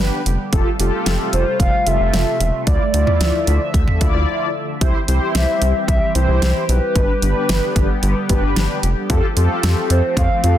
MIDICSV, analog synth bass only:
0, 0, Header, 1, 2, 480
1, 0, Start_track
1, 0, Tempo, 535714
1, 472, Time_signature, 4, 2, 24, 8
1, 9480, End_track
2, 0, Start_track
2, 0, Title_t, "Analog synth bass"
2, 0, Program_c, 0, 38
2, 0, Note_on_c, 0, 31, 93
2, 94, Note_off_c, 0, 31, 0
2, 232, Note_on_c, 0, 29, 89
2, 334, Note_off_c, 0, 29, 0
2, 472, Note_on_c, 0, 29, 109
2, 574, Note_off_c, 0, 29, 0
2, 712, Note_on_c, 0, 29, 100
2, 814, Note_off_c, 0, 29, 0
2, 952, Note_on_c, 0, 29, 104
2, 1054, Note_off_c, 0, 29, 0
2, 1192, Note_on_c, 0, 29, 99
2, 1294, Note_off_c, 0, 29, 0
2, 1430, Note_on_c, 0, 29, 95
2, 1533, Note_off_c, 0, 29, 0
2, 1672, Note_on_c, 0, 29, 96
2, 1774, Note_off_c, 0, 29, 0
2, 1792, Note_on_c, 0, 29, 89
2, 1894, Note_off_c, 0, 29, 0
2, 1912, Note_on_c, 0, 29, 100
2, 2014, Note_off_c, 0, 29, 0
2, 2152, Note_on_c, 0, 28, 96
2, 2254, Note_off_c, 0, 28, 0
2, 2392, Note_on_c, 0, 38, 107
2, 2494, Note_off_c, 0, 38, 0
2, 2632, Note_on_c, 0, 38, 101
2, 2734, Note_off_c, 0, 38, 0
2, 2872, Note_on_c, 0, 38, 104
2, 2974, Note_off_c, 0, 38, 0
2, 3112, Note_on_c, 0, 38, 106
2, 3214, Note_off_c, 0, 38, 0
2, 3351, Note_on_c, 0, 38, 98
2, 3453, Note_off_c, 0, 38, 0
2, 3594, Note_on_c, 0, 38, 105
2, 3695, Note_off_c, 0, 38, 0
2, 3712, Note_on_c, 0, 38, 105
2, 3814, Note_off_c, 0, 38, 0
2, 4313, Note_on_c, 0, 36, 107
2, 4414, Note_off_c, 0, 36, 0
2, 4552, Note_on_c, 0, 36, 101
2, 4654, Note_off_c, 0, 36, 0
2, 4792, Note_on_c, 0, 36, 107
2, 4894, Note_off_c, 0, 36, 0
2, 5032, Note_on_c, 0, 36, 98
2, 5134, Note_off_c, 0, 36, 0
2, 5271, Note_on_c, 0, 36, 101
2, 5373, Note_off_c, 0, 36, 0
2, 5512, Note_on_c, 0, 36, 96
2, 5614, Note_off_c, 0, 36, 0
2, 5632, Note_on_c, 0, 36, 98
2, 5734, Note_off_c, 0, 36, 0
2, 5752, Note_on_c, 0, 36, 98
2, 5854, Note_off_c, 0, 36, 0
2, 5992, Note_on_c, 0, 35, 98
2, 6094, Note_off_c, 0, 35, 0
2, 6232, Note_on_c, 0, 31, 104
2, 6334, Note_off_c, 0, 31, 0
2, 6472, Note_on_c, 0, 31, 98
2, 6574, Note_off_c, 0, 31, 0
2, 6712, Note_on_c, 0, 31, 101
2, 6814, Note_off_c, 0, 31, 0
2, 6952, Note_on_c, 0, 31, 101
2, 7054, Note_off_c, 0, 31, 0
2, 7192, Note_on_c, 0, 31, 104
2, 7294, Note_off_c, 0, 31, 0
2, 7434, Note_on_c, 0, 31, 97
2, 7535, Note_off_c, 0, 31, 0
2, 7551, Note_on_c, 0, 31, 103
2, 7654, Note_off_c, 0, 31, 0
2, 7672, Note_on_c, 0, 31, 96
2, 7774, Note_off_c, 0, 31, 0
2, 7912, Note_on_c, 0, 29, 92
2, 8014, Note_off_c, 0, 29, 0
2, 8152, Note_on_c, 0, 41, 118
2, 8254, Note_off_c, 0, 41, 0
2, 8392, Note_on_c, 0, 41, 96
2, 8494, Note_off_c, 0, 41, 0
2, 8632, Note_on_c, 0, 41, 102
2, 8734, Note_off_c, 0, 41, 0
2, 8872, Note_on_c, 0, 41, 103
2, 8974, Note_off_c, 0, 41, 0
2, 9110, Note_on_c, 0, 41, 101
2, 9213, Note_off_c, 0, 41, 0
2, 9352, Note_on_c, 0, 41, 102
2, 9454, Note_off_c, 0, 41, 0
2, 9480, End_track
0, 0, End_of_file